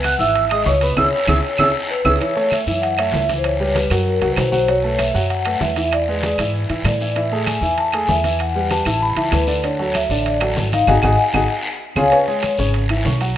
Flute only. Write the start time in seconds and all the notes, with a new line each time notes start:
0.04 F#6
0.19 E6
0.50 D#6
0.66 C#6
0.82 B5
0.97 E6
1.29 E6
1.59 E6
2.05 E6